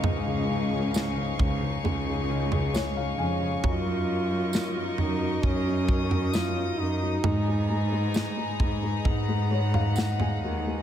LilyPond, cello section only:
\new Staff \with { instrumentName = "Cello section" } { \clef bass \time 4/4 \key fis \major \tempo 4 = 66 cis,4. cis,8 cis,4. eis,8 | fis,4. fis,8 fis,4. fis,8 | gis,4. gis,8 gis,4. dis,8 | }